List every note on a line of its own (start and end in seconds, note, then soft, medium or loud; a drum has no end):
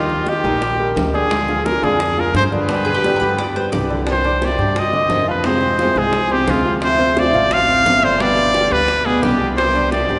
0.00 0.39 D#2 medium
0.00 0.22 D#3 medium
0.00 0.45 D#3 medium
0.00 0.45 G3 medium
0.00 0.45 A#3 medium
0.00 0.22 D#4 medium
0.00 0.44 D#4 medium
0.00 0.30 F4 medium
0.00 0.43 G4 medium
0.00 0.22 D#5 medium
0.10 high bongo soft
0.26 0.42 D#3 medium
0.26 0.42 D#4 medium
0.26 0.97 G4 medium
0.26 0.43 D#5 medium
0.26 high bongo medium
0.44 0.93 A#1 loud
0.44 0.73 G3 medium
0.44 0.61 G3 medium
0.44 0.61 A#3 medium
0.44 0.61 D#4 medium
0.44 0.61 G4 medium
0.44 0.73 G4 medium
0.44 0.73 A#4 medium
0.44 high bongo soft
0.61 muted nylon-string guitar stroke medium
0.61 high bongo medium
0.79 1.08 G3 medium
0.79 1.08 G4 medium
0.79 1.08 A#4 medium
0.94 1.77 D2 medium
0.94 1.29 G3 soft
0.94 1.30 A#3 medium
0.94 1.30 D#4 soft
0.94 1.30 G4 medium
0.94 high bongo soft
0.94 low bongo medium
1.13 1.42 D3 medium
1.13 1.67 G#4 medium
1.13 1.42 D5 medium
1.13 high bongo soft
1.29 1.81 D3 medium
1.29 1.82 G#3 medium
1.29 1.83 D4 medium
1.29 1.81 F4 medium
1.29 high bongo medium
1.48 1.76 F3 medium
1.48 1.77 F4 medium
1.48 1.77 G#4 medium
1.48 high bongo soft
1.66 1.86 A#4 medium
1.66 high bongo medium
1.82 2.31 F2 loud
1.82 2.11 D3 medium
1.82 2.00 G#3 medium
1.82 2.11 D4 medium
1.82 2.00 D4 medium
1.82 1.99 F4 medium
1.82 2.21 G#4 loud
1.82 2.11 D5 medium
1.82 high bongo soft
2.00 muted nylon-string guitar stroke medium
2.00 high bongo medium
2.17 2.46 F3 medium
2.17 2.46 F4 medium
2.17 2.46 G#4 medium
2.17 2.35 A#4 medium
2.34 3.15 G2 medium
2.34 2.68 D3 soft
2.34 2.69 D4 medium
2.34 2.69 F4 medium
2.34 2.44 C5 loud
2.34 high bongo soft
2.34 low bongo medium
2.51 2.66 D3 medium
2.51 2.66 D4 medium
2.51 3.69 B4 medium
2.51 2.66 D5 medium
2.51 high bongo soft
2.68 3.20 B2 medium
2.68 2.97 D3 medium
2.68 3.20 D3 medium
2.68 3.20 G3 medium
2.68 3.21 B3 medium
2.68 2.97 D4 medium
2.68 3.21 G4 medium
2.68 2.98 D5 medium
2.68 high bongo medium
2.85 2.94 G#4 medium
2.85 high bongo soft
2.94 3.17 G4 medium
3.04 3.18 D3 medium
3.04 3.18 D4 medium
3.04 3.18 D5 medium
3.04 high bongo medium
3.16 3.19 A#4 medium
3.16 3.36 B4 medium
3.21 3.69 G2 loud
3.21 3.38 D3 medium
3.21 3.49 G3 medium
3.21 3.38 G3 medium
3.21 3.38 B3 medium
3.21 3.49 G4 medium
3.21 3.38 G4 medium
3.21 3.50 B4 medium
3.21 high bongo soft
3.38 3.56 D5 loud
3.38 muted nylon-string guitar stroke medium
3.38 high bongo medium
3.56 3.84 G3 medium
3.56 3.84 G4 medium
3.56 3.84 B4 medium
3.56 3.72 C5 loud
3.72 4.53 C2 medium
3.72 4.06 D3 medium
3.72 4.07 G3 soft
3.72 4.07 B3 medium
3.72 4.08 G4 medium
3.72 4.04 D5 medium
3.72 high bongo soft
3.72 low bongo medium
3.90 4.04 D3 medium
3.90 4.04 D4 medium
3.90 4.04 D5 medium
3.90 high bongo soft
4.07 4.24 C3 medium
4.07 4.24 D#3 medium
4.07 4.24 G3 medium
4.07 4.25 D4 medium
4.07 4.23 G4 medium
4.07 high bongo medium
4.11 4.47 C5 loud
4.24 4.42 G3 soft
4.24 4.53 D4 medium
4.24 4.42 D4 soft
4.24 4.41 G4 soft
4.24 4.53 D5 medium
4.24 4.53 D6 medium
4.24 high bongo soft
4.41 4.58 C3 medium
4.41 4.58 D#3 medium
4.41 4.59 G3 medium
4.41 4.59 D4 medium
4.41 4.59 G4 medium
4.41 4.80 D5 medium
4.41 high bongo medium
4.58 5.07 G2 medium
4.58 4.87 G3 medium
4.58 4.75 G3 soft
4.58 4.76 D4 medium
4.58 4.87 G4 medium
4.58 4.76 G4 medium
4.58 4.87 G5 medium
4.58 high bongo soft
4.76 5.29 D#5 loud
4.76 muted nylon-string guitar stroke medium
4.76 high bongo medium
4.93 5.21 D3 medium
4.93 5.21 D#5 medium
4.93 5.22 D6 medium
4.93 high bongo soft
5.10 5.90 F2 loud
5.10 5.27 C3 medium
5.10 5.27 D#3 medium
5.10 5.27 G3 medium
5.10 5.28 D4 medium
5.10 5.26 G4 medium
5.10 high bongo soft
5.10 low bongo medium
5.28 5.42 F3 medium
5.28 5.45 G3 soft
5.28 5.45 D4 soft
5.28 5.42 F4 medium
5.28 5.44 G4 soft
5.28 5.48 B4 medium
5.28 5.42 F5 medium
5.44 5.73 C3 medium
5.44 5.61 C3 medium
5.44 5.62 F3 medium
5.44 5.62 G#3 medium
5.44 5.73 C4 medium
5.44 5.62 C4 medium
5.44 5.61 F4 medium
5.44 5.73 C5 medium
5.44 6.00 C5 loud
5.44 high bongo medium
5.61 5.80 G#3 soft
5.61 5.79 C4 soft
5.61 5.79 F4 medium
5.61 high bongo soft
5.79 5.96 C3 medium
5.79 5.93 F3 medium
5.79 5.96 F3 medium
5.79 5.97 G#3 medium
5.79 5.97 C4 medium
5.79 5.94 F4 medium
5.79 5.96 F4 medium
5.79 5.94 F5 medium
5.79 high bongo medium
5.95 6.44 C2 loud
5.95 6.25 G#3 medium
5.95 6.13 G#3 soft
5.95 6.13 C4 medium
5.95 6.13 F4 medium
5.95 6.25 G#4 medium
5.95 6.34 G#4 loud
5.95 6.25 G#5 medium
5.95 high bongo soft
6.13 muted nylon-string guitar stroke medium
6.13 high bongo medium
6.30 6.59 C3 medium
6.30 6.59 C4 medium
6.30 6.52 G4 medium
6.30 6.59 C5 medium
6.30 high bongo soft
6.47 7.28 D2 loud
6.47 6.64 C3 medium
6.47 6.64 F3 medium
6.47 6.65 G#3 medium
6.47 6.65 C4 medium
6.47 6.64 F4 medium
6.47 6.75 F4 medium
6.47 high bongo soft
6.47 low bongo medium
6.65 6.94 F3 medium
6.65 6.81 G#3 soft
6.65 6.81 C4 soft
6.65 6.82 F4 soft
6.65 6.94 F4 medium
6.65 6.94 F5 medium
6.80 6.98 D3 medium
6.80 6.98 A3 medium
6.80 6.98 C4 medium
6.80 6.96 F4 medium
6.80 7.21 C5 loud
6.80 high bongo medium
6.98 7.15 A3 soft
6.98 7.16 C4 soft
6.98 7.27 C4 medium
6.98 7.15 F4 medium
6.98 7.28 C5 medium
6.98 7.28 C6 medium
6.98 high bongo soft
7.16 7.33 D3 medium
7.16 7.33 A3 medium
7.16 7.34 C4 medium
7.16 7.32 F4 medium
7.16 7.55 D5 loud
7.16 high bongo medium
7.33 7.82 A1 loud
7.33 7.62 F3 medium
7.33 7.49 A3 soft
7.33 7.49 C4 medium
7.33 7.49 F4 medium
7.33 7.62 F4 medium
7.33 7.63 F5 medium
7.33 high bongo soft
7.50 8.06 F5 loud
7.50 muted nylon-string guitar stroke medium
7.50 high bongo medium
7.68 7.96 C4 medium
7.68 7.97 C5 medium
7.68 7.97 C6 medium
7.68 high bongo soft
7.85 8.66 G1 medium
7.85 8.02 D3 medium
7.85 8.02 A3 medium
7.85 8.02 C4 medium
7.85 8.01 F4 medium
7.85 high bongo soft
7.85 low bongo medium
8.02 8.17 D3 medium
8.02 8.18 A3 soft
8.02 8.19 C4 soft
8.02 8.17 D4 medium
8.02 8.19 F4 soft
8.02 8.23 C5 loud
8.02 8.17 D5 medium
8.18 8.48 B2 medium
8.18 8.35 D3 medium
8.18 8.36 G3 medium
8.18 8.36 B3 medium
8.18 8.48 B3 medium
8.18 8.35 D4 medium
8.18 8.34 G4 medium
8.18 8.48 B4 medium
8.18 8.73 D5 loud
8.18 high bongo medium
8.35 8.52 B3 soft
8.35 8.53 D4 soft
8.35 8.53 G4 soft
8.35 high bongo soft
8.53 8.70 D3 medium
8.53 8.68 D3 medium
8.53 8.70 G3 medium
8.53 8.70 B3 medium
8.53 8.70 D4 medium
8.53 8.69 D4 medium
8.53 8.69 G4 medium
8.53 8.69 D5 medium
8.53 high bongo medium
8.70 9.19 D2 medium
8.70 9.00 G3 medium
8.70 8.86 B3 soft
8.70 8.86 D4 soft
8.70 8.86 G4 medium
8.70 9.00 G4 medium
8.70 9.07 B4 loud
8.70 9.00 G5 medium
8.70 high bongo soft
8.87 muted nylon-string guitar stroke medium
8.87 high bongo medium
9.06 9.34 B2 medium
9.06 9.34 B3 medium
9.06 9.24 G#4 medium
9.06 9.34 B4 medium
9.06 high bongo soft
9.21 10.03 C2 medium
9.21 9.38 D3 medium
9.21 9.39 G3 medium
9.21 9.39 B3 medium
9.21 9.38 D4 medium
9.21 9.49 G4 medium
9.21 9.37 G4 medium
9.21 high bongo soft
9.21 low bongo medium
9.38 9.69 G3 medium
9.38 9.57 B3 soft
9.38 9.56 D4 soft
9.38 9.56 G4 soft
9.38 9.69 G4 medium
9.38 9.69 G5 medium
9.56 9.73 C3 medium
9.56 9.74 D#3 medium
9.56 9.74 G3 medium
9.56 9.73 D4 medium
9.56 9.72 G4 medium
9.56 9.89 C5 loud
9.56 high bongo medium
9.73 9.90 G3 soft
9.73 10.03 D4 medium
9.73 9.90 D4 soft
9.73 9.91 G4 soft
9.73 10.03 D5 medium
9.73 10.03 D6 medium
9.73 high bongo soft
9.90 10.07 C3 medium
9.90 10.08 D#3 medium
9.90 10.08 G3 medium
9.90 10.08 D4 medium
9.90 10.07 G4 medium
9.90 10.19 D5 medium
9.90 high bongo medium
10.08 10.19 G2 loud
10.08 10.19 G3 medium
10.08 10.19 G3 soft
10.08 10.19 D4 soft
10.08 10.19 G4 medium
10.08 10.19 G5 medium
10.08 high bongo soft